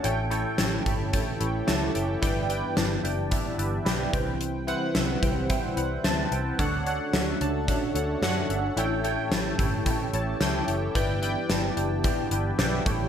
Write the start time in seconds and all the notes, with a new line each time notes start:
Already playing: A3 C#4
0.03 A1 A2 E3 E4 G4 A4 C#5 G5, closed hi-hat
0.30 E4 A4 C#5 G5, closed hi-hat
0.58 A1 E4 A4 C#5 A5, snare, closed hi-hat
0.86 G1 E4 A4 C#5 G5 B5, kick, closed hi-hat
1.13 E4 A4 C#5 G5 A5, kick, closed hi-hat
1.40 A1 E4 A4 C#5 G5, closed hi-hat
1.67 C#2 E4 A4 C#5 F#5 A5, snare, closed hi-hat
1.94 F#1 E4 A4 C#5 E5 G5, closed hi-hat
2.22 G1 G2 B3 D4 E4 B4 D5 G5, kick, closed hi-hat
2.49 E4 B4 D5 G5, closed hi-hat
2.76 G1 E4 B4 D5 A5, snare, closed hi-hat
3.03 F#1 E4 B4 D5 G5, closed hi-hat
3.31 E4 B4 D5 E5, kick, closed hi-hat
3.58 G1 E4 B4 D5 E5, closed hi-hat
3.85 B1 E4 B4 D5 G5, snare, closed hi-hat
4.12 C2 C3 G3 C4 E4 B4 C5 G5, kick, closed hi-hat
4.41 closed hi-hat
4.67 E4 B4 C5 F#5, closed hi-hat
4.94 C2 E4 B4 C5 E5, snare, closed hi-hat
5.22 C2 E4 B4 C5 G5, kick, closed hi-hat
5.49 E4 B4 C5 G5, kick, closed hi-hat
5.76 C2 E4 B4 C5 F#5, closed hi-hat
6.04 D2 E4 B4 C5 A5, snare, closed hi-hat
6.31 C2 E4 B4 C5 G5, closed hi-hat
6.59 D2 D3 A3 C#4 D4 F#4 A4 C#5 F#5, kick, closed hi-hat
6.86 D4 A4 C#5 F#5, closed hi-hat
7.13 D2 D4 A4 C#5 E5, snare, closed hi-hat
7.40 C#2 D4 A4 C#5 A5, closed hi-hat
7.67 D4 A4 C#5 F#5, kick, closed hi-hat
7.95 D2 D4 A4 C#5 F#5, closed hi-hat
8.22 F#2 D4 A4 C#5 F#5, snare, closed hi-hat
8.49 G1 D4 A4 C#5 E5, closed hi-hat
8.76 A1 A2 E3 A3 E4 G4 A4 C#5 G5, closed hi-hat
9.04 E4 A4 C#5 G5, closed hi-hat
9.31 A1 E4 A4 C#5 A5, snare, closed hi-hat
9.59 G1 E4 A4 C#5 G5, kick, closed hi-hat
9.86 E4 A4 C#5 G5, kick, closed hi-hat
10.13 A1 E4 A4 C#5 A5, closed hi-hat
10.40 C#2 E4 A4 C#5 G5, snare, closed hi-hat
10.67 F#1 E4 A4 C#5 G5, closed hi-hat
10.94 G1 G2 B3 D4 E4 B4 D5 G5, kick, closed hi-hat
11.22 E4 B4 D5 G5, closed hi-hat
11.49 G1 E4 B4 D5 A5, snare, closed hi-hat
11.76 F#1 E4 B4 D5 G5, closed hi-hat
12.04 E4 B4 D5 G5, kick, closed hi-hat
12.31 G1 E4 B4 D5 G5, closed hi-hat
12.58 B1 E4 B4 D5 G5, snare, closed hi-hat
12.86 A1 A2 A3 C#4 E4 A4 C#5 G5, kick, closed hi-hat